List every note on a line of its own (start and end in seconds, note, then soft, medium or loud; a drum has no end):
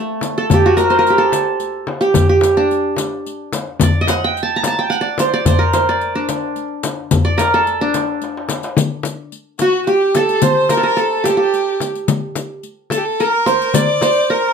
0.00 0.83 A3 medium
0.00 0.16 C4 medium
0.21 riq soft
0.21 darbuka tek medium
0.21 frame drum medium
0.37 0.83 A4 medium
0.37 darbuka ka soft
0.50 0.72 G4 medium
0.50 riq medium
0.50 frame drum medium
0.50 darbuka dum medium
0.66 1.16 F#4 medium
0.77 0.98 A#4 medium
0.77 riq soft
0.77 darbuka tek medium
0.90 1.96 C5 medium
0.99 1.24 A#4 medium
1.07 2.00 G4 medium
1.07 riq soft
1.18 2.35 A4 medium
1.32 riq soft
1.32 darbuka tek medium
1.32 frame drum medium
1.60 riq soft
1.60 darbuka ka soft
1.87 darbuka tek medium
1.87 frame drum medium
2.01 2.29 G4 medium
2.01 riq soft
2.01 darbuka ka soft
2.14 riq medium
2.14 frame drum medium
2.14 darbuka dum medium
2.29 3.55 G4 medium
2.41 riq medium
2.41 darbuka tek medium
2.41 frame drum medium
2.57 4.07 D4 medium
2.71 riq soft
2.96 riq medium
2.96 darbuka tek medium
2.96 frame drum medium
3.26 riq soft
3.53 riq medium
3.53 darbuka tek medium
3.53 frame drum medium
3.68 darbuka ka soft
3.80 4.07 D5 medium
3.80 riq medium
3.80 frame drum medium
3.80 darbuka dum medium
4.01 4.95 D#5 medium
4.08 4.30 F#5 medium
4.08 riq medium
4.08 darbuka tek medium
4.08 frame drum medium
4.24 4.78 G5 loud
4.37 riq soft
4.37 darbuka ka soft
4.43 4.62 A5 medium
4.56 4.73 A#5 medium
4.64 5.45 A5 medium
4.64 riq medium
4.64 darbuka tek medium
4.64 frame drum medium
4.79 4.96 G5 medium
4.90 5.76 F#5 loud
4.90 riq soft
5.01 5.33 D5 medium
5.18 5.47 C5 loud
5.18 riq soft
5.18 darbuka tek medium
5.18 frame drum medium
5.32 5.89 D5 loud
5.32 darbuka ka soft
5.46 5.73 C5 medium
5.46 riq medium
5.46 darbuka dum loud
5.46 frame drum medium
5.59 6.72 A#4 medium
5.73 6.79 C5 medium
5.73 riq soft
5.73 darbuka tek medium
5.73 frame drum medium
5.89 6.87 D5 medium
6.01 riq soft
6.01 darbuka ka soft
6.15 7.65 D4 medium
6.29 riq soft
6.29 darbuka tek medium
6.29 frame drum medium
6.56 riq soft
6.83 riq soft
6.83 darbuka tek medium
6.83 frame drum medium
6.99 darbuka ka soft
7.11 riq medium
7.11 frame drum loud
7.11 darbuka dum medium
7.25 8.23 D5 loud
7.38 7.60 A#4 loud
7.38 riq soft
7.38 darbuka tek medium
7.38 frame drum medium
7.54 8.71 A4 medium
7.67 riq soft
7.67 darbuka ka soft
7.81 9.31 D4 medium
7.94 riq soft
7.94 darbuka tek medium
7.94 frame drum medium
8.22 riq soft
8.22 darbuka tek medium
8.37 darbuka ka medium
8.49 riq soft
8.49 darbuka tek medium
8.49 frame drum medium
8.63 riq soft
8.63 darbuka ka medium
8.77 riq medium
8.77 frame drum loud
9.03 riq soft
9.03 frame drum medium
9.32 riq soft
9.59 9.86 F#4 medium
9.59 9.93 F#4 medium
9.59 riq soft
9.59 frame drum medium
9.87 10.17 G4 medium
9.87 11.13 G4 medium
9.87 riq soft
10.15 10.44 A4 medium
10.15 10.76 A4 medium
10.15 riq soft
10.15 frame drum medium
10.29 riq soft
10.42 10.73 C5 medium
10.42 11.49 C5 medium
10.42 riq medium
10.42 frame drum medium
10.69 10.83 A#4 medium
10.69 10.85 A#4 medium
10.69 riq soft
10.69 frame drum medium
10.77 10.89 A4 medium
10.83 11.03 A#4 medium
10.83 11.01 A#4 medium
10.97 11.29 A4 medium
10.97 riq soft
11.24 11.37 G4 medium
11.24 11.41 G4 medium
11.24 riq soft
11.24 frame drum medium
11.30 12.47 A4 medium
11.37 12.63 G4 medium
11.42 11.86 G4 medium
11.54 riq soft
11.80 riq soft
11.80 frame drum medium
11.95 riq soft
12.08 riq medium
12.08 frame drum medium
12.36 riq soft
12.36 frame drum medium
12.63 riq soft
12.90 13.26 A4 medium
12.90 12.99 A4 medium
12.90 riq soft
12.90 frame drum medium
12.98 13.06 G4 medium
13.05 13.21 A4 medium
13.20 13.76 A#4 medium
13.20 14.30 A#4 medium
13.20 riq soft
13.46 14.02 C5 loud
13.46 riq soft
13.46 frame drum medium
13.62 riq soft
13.74 14.32 D5 medium
13.74 14.53 D5 medium
13.74 riq medium
13.74 frame drum loud
14.01 14.53 C5 medium
14.01 riq soft
14.01 frame drum medium
14.30 14.53 A#4 medium